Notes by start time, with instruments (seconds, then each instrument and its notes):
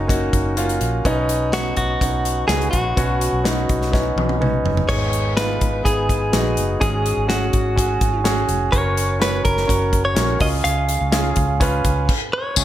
Already playing: fingered electric bass F#1, grand piano A#3 C#4 D#4 F4 F#4, clean electric guitar D#4
0.07 grand piano A#3 C#4 F#4, kick, closed hi-hat
0.33 fingered electric bass F#1, kick, closed hi-hat
0.56 grand piano A#3 C#4 F4, closed hi-hat
0.69 closed hi-hat
0.81 fingered electric bass A#1, closed hi-hat
1.05 fingered electric bass B1, grand piano B2 B3 C#4 D#4, kick, closed hi-hat
1.29 closed hi-hat
1.52 grand piano B3 D#4, clean electric guitar F#4, snare, closed hi-hat
1.77 fingered electric bass B1, clean electric guitar F#4, kick, closed hi-hat
2.01 fingered electric bass B1, grand piano B3 C#4 D#4, kick, closed hi-hat
2.25 closed hi-hat
2.48 fingered electric bass C#2, grand piano B3 C#4 F#4, clean electric guitar G#4, snare, closed hi-hat
2.62 closed hi-hat
2.71 fingered electric bass A#1, clean electric guitar F#4, kick, closed hi-hat
2.96 fingered electric bass B1, grand piano B2 B3 C#4 F#4, kick, closed hi-hat
3.21 closed hi-hat
3.33 fingered electric bass B1
3.44 grand piano B3 C#4 D#4, snare, closed hi-hat
3.69 fingered electric bass B1, kick, closed hi-hat
3.82 snare
3.92 grand piano B3 C#4 D#4, kick, snare
4.16 fingered electric bass B1, high tom
4.29 high tom
4.40 grand piano B3 C#4 D#4, mid tom
4.64 fingered electric bass F#1, floor tom
4.77 floor tom
4.88 fingered electric bass G#1, grand piano G#2 B3 D#4 G#4, clean electric guitar C#5, kick, crash
5.13 closed hi-hat
5.37 grand piano B3 D#4 F4, clean electric guitar B4, snare, closed hi-hat
5.61 fingered electric bass G#1, kick, closed hi-hat
5.83 fingered electric bass G#1, grand piano B3 D#4 G#4, clean electric guitar G#4, kick, closed hi-hat
6.09 kick, closed hi-hat
6.32 fingered electric bass A#1, grand piano B3 D#4 F#4, snare, closed hi-hat
6.57 fingered electric bass F#1, closed hi-hat
6.80 fingered electric bass G#1, grand piano G#2 C#4 F#4 G#4, clean electric guitar G#4, kick, closed hi-hat
7.06 closed hi-hat
7.17 fingered electric bass G#1
7.28 grand piano C#4 F#4 G#4, clean electric guitar F#4, snare, closed hi-hat
7.53 fingered electric bass G#1, kick, closed hi-hat
7.76 grand piano C#4 F#4 G#4, kick, closed hi-hat
8.01 fingered electric bass G#1, kick, closed hi-hat
8.24 grand piano C#4 F#4 G#4, snare, closed hi-hat
8.48 fingered electric bass F1, closed hi-hat
8.72 fingered electric bass F#1, grand piano C#4 F#4 A#4, clean electric guitar C#5, kick, closed hi-hat
8.97 closed hi-hat
9.20 grand piano C#4 F#4 C#5, clean electric guitar B4, snare, closed hi-hat
9.45 fingered electric bass F#1, clean electric guitar A#4, kick, closed hi-hat
9.57 snare
9.68 fingered electric bass F#1, grand piano C#4 F#4 C#5, kick, closed hi-hat
9.93 kick, closed hi-hat
10.05 clean electric guitar C#5
10.15 fingered electric bass A#1, grand piano C#4 F#4 A#4, snare, closed hi-hat
10.39 fingered electric bass C#2, grand piano C#3 C#4 F4 G#4, clean electric guitar D#5, kick, open hi-hat
10.64 fingered electric bass C#2, clean electric guitar F5, closed hi-hat
10.89 closed hi-hat
11.01 fingered electric bass C#2
11.12 grand piano C#4 F4 G#4, snare, closed hi-hat
11.36 fingered electric bass C#2, kick, closed hi-hat
11.60 grand piano C#4 F4 B4, kick, closed hi-hat
11.84 fingered electric bass C#2, kick, closed hi-hat
12.09 kick, crash
12.33 clean electric guitar C#5
12.56 fingered electric bass C#2, grand piano C#3 G#3 C#4 F4 G#4, kick, crash, tambourine